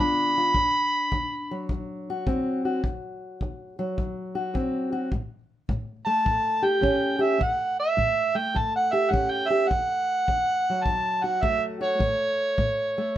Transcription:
Already playing: steel-string acoustic guitar D3 B3 F4
0.00 steel-string acoustic guitar G2 D4, harmonica B5
0.38 steel-string acoustic guitar F4
0.55 steel-string acoustic guitar D2, kick
1.12 steel-string acoustic guitar D2, kick
1.51 steel-string acoustic guitar F#3
1.69 steel-string acoustic guitar D2, kick
2.10 steel-string acoustic guitar F#4
2.27 steel-string acoustic guitar D2 C4, kick
2.65 steel-string acoustic guitar F#4
2.84 steel-string acoustic guitar D2, kick
3.41 steel-string acoustic guitar D2, kick
3.79 steel-string acoustic guitar F#3
3.97 steel-string acoustic guitar D2, kick
4.35 steel-string acoustic guitar F#4
4.54 steel-string acoustic guitar D2 C4, kick
4.92 steel-string acoustic guitar F#4
5.12 steel-string acoustic guitar A2, kick
5.69 steel-string acoustic guitar A2, kick
6.05 steel-string acoustic guitar A3, harmonica A5
6.25 steel-string acoustic guitar A2, kick
6.62 steel-string acoustic guitar G4, harmonica G5
6.81 steel-string acoustic guitar A2 C#4, kick
7.19 steel-string acoustic guitar G4, harmonica E5
7.38 steel-string acoustic guitar A2, harmonica F#5, kick
7.80 harmonica E5
7.97 steel-string acoustic guitar A2, kick
8.35 steel-string acoustic guitar A3, harmonica G5
8.54 steel-string acoustic guitar A2, harmonica A5, kick
8.76 harmonica F#5
8.93 steel-string acoustic guitar G4, harmonica E5
9.11 steel-string acoustic guitar A2 C#4, harmonica F#5, kick
9.31 harmonica G5
9.49 steel-string acoustic guitar G4, harmonica E5
9.68 steel-string acoustic guitar D2, harmonica F#5, kick
10.28 steel-string acoustic guitar D2, kick
10.70 steel-string acoustic guitar F#3
10.84 steel-string acoustic guitar D2, harmonica A5, kick
11.23 steel-string acoustic guitar F#4, harmonica F#5
11.42 steel-string acoustic guitar D2 A3, harmonica E5, kick
11.81 steel-string acoustic guitar F#4, harmonica C#5
11.99 steel-string acoustic guitar A2, kick
12.58 steel-string acoustic guitar A2, kick
12.98 steel-string acoustic guitar A3

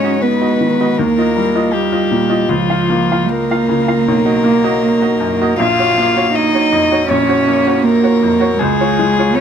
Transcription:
Already playing: grand piano G#2 G#3 F#4 D#5, cello C#4, violin C#5
0.04 grand piano F#4 D#5
0.21 cello B3, violin B4
0.41 grand piano F#4 D#5
0.60 grand piano D#3
0.80 grand piano F#4 D#5
0.97 grand piano D#2, cello A#3, violin A#4
1.18 grand piano F4 D#5
1.36 grand piano G3
1.55 grand piano F4 D#5
1.72 cello G3, violin G4
1.92 grand piano F4 D#5
2.11 grand piano A#2
2.30 grand piano F4 D#5
2.49 grand piano C#2, cello F3, violin F4
2.69 grand piano F4 F5
2.90 grand piano A#3
3.11 grand piano F4 F5
3.28 cello A#3, violin A#4
3.51 grand piano F4 F5
3.69 grand piano C#3
3.88 grand piano F4 F5
4.08 grand piano B1
4.25 grand piano F#4 D#5
4.44 grand piano A#3
4.64 grand piano F#4 D#5
5.02 grand piano F#4 D#5
5.20 grand piano F#2
5.41 grand piano F#4 D#5
5.59 grand piano A#1, cello F4, violin F5
5.79 grand piano F#4 C#5
5.98 grand piano A#3
6.16 grand piano F#4 C#5
6.33 cello D#4, violin D#5
6.54 grand piano F#4 C#5
6.72 grand piano F2
6.91 grand piano F#4 C#5
7.08 grand piano A#1, cello C#4, violin C#5
7.29 grand piano F#4 C#5
7.48 grand piano A#3
7.67 grand piano F#4 C#5
7.84 cello A#3, violin A#4
8.03 grand piano F#4 C#5
8.23 grand piano F2
8.40 grand piano F#4 C#5
8.57 grand piano C#2, cello G#3, violin G#4
8.80 grand piano F4 C#5
8.99 grand piano G#3
9.19 grand piano F4 C#5
9.34 cello C#4, violin C#5

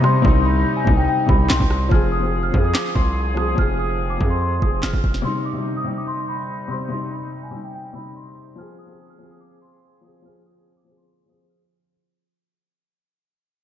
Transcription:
Already playing: 808-style bass C3, woodwind section C3 G3 D#4, grand piano G3 D#4
0.00 grand piano C3 G3, celesta C6, cross-stick
0.06 grand piano C4
0.22 808-style bass C2, grand piano C3 G3, celesta C6, kick
0.27 grand piano D#4
0.45 celesta B5
0.77 celesta G#5
0.84 808-style bass C2, grand piano C3 G3, kick
0.90 grand piano D#4
0.97 celesta G5
1.08 celesta G5
1.26 808-style bass C2, grand piano C3 G3, celesta B5, kick
1.32 grand piano D#4
1.50 808-style bass B1, celesta C6, snare, clap
1.60 808-style bass C2, kick
1.70 cross-stick
1.89 808-style bass F1, grand piano F3 C4, woodwind section F3 C4 G#4, celesta F6, kick
1.94 grand piano G#4
2.12 celesta D#6
2.20 grand piano F3 C4
2.25 grand piano G#4
2.43 celesta F6
2.52 808-style bass F2, grand piano F3 C4, kick
2.57 grand piano G#4
2.64 celesta D#6
2.74 celesta D6, snare, clap
2.95 808-style bass C2, celesta C6, kick
3.34 grand piano F3 C4, celesta D#6, cross-stick
3.40 grand piano G#4
3.55 808-style bass F1, grand piano F3 C4, celesta F6, kick
3.61 grand piano G#4
3.79 celesta D#6
4.10 celesta D6
4.18 808-style bass F2, grand piano F3 C4, kick
4.23 grand piano G#4
4.30 celesta C6
4.41 celesta C6
4.59 808-style bass F1, grand piano F3 C4, celesta D#6, kick
4.65 grand piano G#4
4.83 808-style bass F1, celesta F6, snare, clap
4.93 808-style bass F1, kick
5.04 808-style bass F1, kick
5.14 snare
5.22 grand piano C3 G3, woodwind section C3 G3 D#4, celesta C6
5.27 grand piano D#4
5.45 celesta D6
5.53 grand piano C3 G3
5.59 grand piano D#4
5.77 celesta D#6
5.84 grand piano C3 G3
5.90 grand piano D#4
5.98 celesta D6
6.08 celesta C6
6.29 celesta B5
6.68 grand piano C3 G3, celesta C6
6.73 grand piano C4
6.88 grand piano C3 G3, celesta C6
6.94 grand piano D#4
7.43 celesta G#5
7.51 grand piano C3 G3
7.56 grand piano D#4
7.64 celesta G5
7.75 celesta G5
7.93 grand piano C3 G3, celesta B5
7.98 grand piano D#4
8.16 celesta C6
8.56 grand piano F3 C4, woodwind section F3 C4 G#4, celesta F6
8.61 grand piano G#4
8.79 celesta D#6
8.86 grand piano F3 C4
8.92 grand piano G#4
9.10 celesta F6
9.18 grand piano F3 C4
9.24 grand piano G#4
9.31 celesta D#6
9.41 celesta D6
9.62 celesta C6
10.01 grand piano F3 C4, celesta D#6
10.07 grand piano G#4
10.22 grand piano F3 C4, celesta F6
10.27 grand piano G#4
10.46 celesta D#6
10.77 celesta D6
10.84 grand piano F3 C4
10.90 grand piano G#4
10.97 celesta C6
11.08 celesta C6
11.26 grand piano F3 C4, celesta D#6
11.31 grand piano G#4
11.50 celesta F6

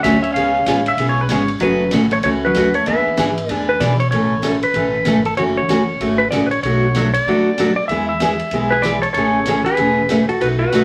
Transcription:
0.03 upright bass D2, steel-string acoustic guitar D3 F#3 A3 C#4 F#4, hollow-body jazz guitar C#4, electric slide guitar E5, kick, snare, hi-hat pedal, ride
0.22 hollow-body jazz guitar C#4, electric slide guitar E5, ride
0.32 upright bass C#2, steel-string acoustic guitar C#3 G#3, hollow-body jazz guitar C#4, electric slide guitar F5, kick, ride
0.36 steel-string acoustic guitar B3 F4 G#4
0.66 upright bass A1, steel-string acoustic guitar C#3 G#3 B3 F4 G#4, kick, snare, hi-hat pedal, ride
0.86 pedal steel guitar E5, ride
0.97 upright bass B1, steel-string acoustic guitar C#3 G#3 B3 F4 G#4, kick, ride
1.09 pedal steel guitar C#5
1.21 pedal steel guitar B4
1.29 upright bass G#1, steel-string acoustic guitar C#3 G#3 B3 F4 G#4, pedal steel guitar C#5, kick, snare, hi-hat pedal, ride
1.48 ride
1.60 upright bass F#1, steel-string acoustic guitar C#3 E3 A3 C#4 F#4, hollow-body jazz guitar F#3, electric slide guitar B4, kick, ride
1.91 upright bass A1, steel-string acoustic guitar C#3 E3 A3 C#4 F#4, kick, snare, hi-hat pedal, ride
2.11 hollow-body jazz guitar A3, electric slide guitar C#5, ride
2.23 upright bass C#2, steel-string acoustic guitar C#3 E3 A3 C#4 F#4, hollow-body jazz guitar A3, electric slide guitar C#5, kick, ride
2.45 hollow-body jazz guitar F#3, electric slide guitar B4
2.54 upright bass D2, steel-string acoustic guitar C#3 E3 A3 C#4 F#4, kick, snare, hi-hat pedal, ride
2.74 hollow-body jazz guitar A3, electric slide guitar C#5, ride
2.86 upright bass E2, steel-string acoustic guitar E3 B3 D4 G#4, hollow-body jazz guitar B3, electric slide guitar E5, kick, ride
3.06 muted upright bass stroke
3.17 upright bass G#2, steel-string acoustic guitar E3 B3 D4 G#4, kick, snare, hi-hat pedal, ride
3.38 ride
3.49 upright bass E2, steel-string acoustic guitar E3 B3 D4 G#4, hollow-body jazz guitar A3, electric slide guitar D5, kick, ride
3.69 electric slide guitar B4
3.80 upright bass B2, steel-string acoustic guitar E3 B3 D4 G#4, electric slide guitar D5, kick, snare, hi-hat pedal, ride
4.00 electric slide guitar C#5, ride
4.11 upright bass A1, steel-string acoustic guitar B2 E3 A3 C#4 A4, electric slide guitar C#5, kick, ride
4.42 steel-string acoustic guitar B2 E3 A3 C#4 A4, kick, snare, hi-hat pedal, ride
4.63 electric slide guitar B4, ride
4.74 upright bass A1, steel-string acoustic guitar B2 E3 A3 C#4 A4, kick, ride
5.05 upright bass G#1, steel-string acoustic guitar B2 E3 A3 C#4 A4, kick, snare, hi-hat pedal, ride
5.25 electric slide guitar A4, ride
5.37 upright bass F#1, steel-string acoustic guitar C#3 E3 A3 C#4 F#4, electric slide guitar C#5, kick, ride
5.57 electric slide guitar C#5
5.68 upright bass F#1, steel-string acoustic guitar C#3 E3 A3 C#4 F#4, kick, snare, hi-hat pedal, ride
6.00 upright bass G#1, steel-string acoustic guitar C#3 E3 A3 C#4 F#4, kick, ride
6.18 electric slide guitar B4
6.31 upright bass A1, steel-string acoustic guitar C#3 E3 A3 C#4 F#4, electric slide guitar D5, kick, snare, hi-hat pedal, ride
6.46 electric slide guitar B4
6.51 electric slide guitar C#5, ride
6.63 upright bass B1, steel-string acoustic guitar B2 F#3 A3 D4 F#4, electric slide guitar C#5, kick, ride
6.95 steel-string acoustic guitar B2 F#3 A3 D4 F#4, kick, snare, hi-hat pedal, ride
7.14 electric slide guitar C#5, ride
7.25 upright bass F#1, steel-string acoustic guitar B2 F#3 A3 D4, electric slide guitar D5, kick
7.29 steel-string acoustic guitar F#4
7.58 steel-string acoustic guitar B2 F#3 A3 D4 F#4, kick, snare, hi-hat pedal, ride
7.76 electric slide guitar D5
7.88 upright bass E2, steel-string acoustic guitar E3 G#3 B3 E4 G#4, electric slide guitar E5, kick, ride
8.09 electric slide guitar E5
8.20 steel-string acoustic guitar E3 G#3 B3 E4 G#4, kick, snare, hi-hat pedal, ride
8.39 ride
8.51 upright bass B1, steel-string acoustic guitar E3 G#3 B3 E4 G#4, kick, ride
8.71 hollow-body jazz guitar G#4, electric slide guitar B4
8.82 steel-string acoustic guitar E3 G#3 B3 E4 G#4, hollow-body jazz guitar B4, electric slide guitar D5, kick, snare, hi-hat pedal, ride
9.02 hollow-body jazz guitar A4, electric slide guitar C#5, ride
9.13 upright bass A1, steel-string acoustic guitar C#3, hollow-body jazz guitar A4, electric slide guitar C#5, kick, ride
9.17 steel-string acoustic guitar E3 A3 C#4 G#4
9.45 steel-string acoustic guitar C#3 E3 A3 C#4 G#4, kick, snare, hi-hat pedal, ride
9.65 hollow-body jazz guitar G#4, electric slide guitar B4, ride
9.77 upright bass E1, steel-string acoustic guitar C#3 E3 A3 C#4 G#4, kick, ride
10.09 steel-string acoustic guitar C#3 E3 A3 C#4 G#4, kick, snare, hi-hat pedal, ride
10.29 hollow-body jazz guitar F#4, electric slide guitar A4, ride
10.41 upright bass B1, steel-string acoustic guitar B2 F#3 A3 D#4 F#4, hollow-body jazz guitar F#4, electric slide guitar B4, kick, ride
10.59 hollow-body jazz guitar F#4, electric slide guitar B4
10.72 upright bass B1, steel-string acoustic guitar B2 F#3 A3 D#4 F#4, kick, snare, hi-hat pedal, ride

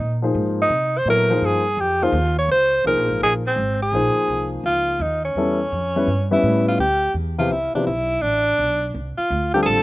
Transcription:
Already playing: tenor saxophone D#4
0.00 upright bass A#2
0.22 upright piano F3 A#3 D#4 G#4 C5
0.35 upright bass G#2
0.61 tenor saxophone D#4
0.70 upright bass C3
0.98 tenor saxophone C5
1.05 upright bass A#2, upright piano F#3 B3 E4 A4 C#5
1.10 tenor saxophone A#4
1.30 upright piano F3 A#3 D#4 G#4 C5
1.42 upright bass G2, tenor saxophone G#4
1.77 upright bass F2, tenor saxophone G4
2.02 upright piano F3 A#3 D#4 G#4 C5, tenor saxophone F4
2.12 upright bass D#2
2.39 tenor saxophone C#5
2.49 upright bass C#2, tenor saxophone C5
2.84 upright bass C2, upright piano F3 A#3 D#4 G#4 C5, tenor saxophone A#4
2.97 upright bass A#1
3.09 upright bass G#1
3.21 upright bass A#1, tenor saxophone G#4
3.47 tenor saxophone C4
3.56 upright bass G#1
3.82 tenor saxophone G#4
3.92 upright bass A#1, upright piano F3 A#3 D#4 G#4 C5
4.15 muted upright bass stroke
4.28 upright bass C2
4.64 upright bass C#2, tenor saxophone F4
4.99 upright bass D#2, tenor saxophone D#4
5.25 tenor saxophone C#4
5.35 upright bass E2, upright piano G3 B3 C#4 E4 A4
5.72 upright bass F2
5.96 upright piano G3 B3 C#4 E4 B4
6.07 upright bass G2
6.31 upright piano G3 B3 C#4 E4 B4, tenor saxophone E4
6.43 upright bass A2
6.68 tenor saxophone F4
6.79 upright bass D2, tenor saxophone G4
7.14 upright bass E2
7.38 upright piano C3 F3 B3 E4 G4, tenor saxophone F4
7.51 upright bass C2, tenor saxophone E4
7.74 upright piano C3 F3 B3 E4 G4, tenor saxophone D4, muted upright bass stroke
7.87 upright bass B1, tenor saxophone E4
8.22 upright bass A1, tenor saxophone D4
8.58 upright bass B1
8.94 upright bass C2
9.18 tenor saxophone F4, muted upright bass stroke
9.30 upright bass D2
9.54 upright piano D3 G3 C4 F4 A4, tenor saxophone G4
9.63 upright bass A1, tenor saxophone G#4 A4

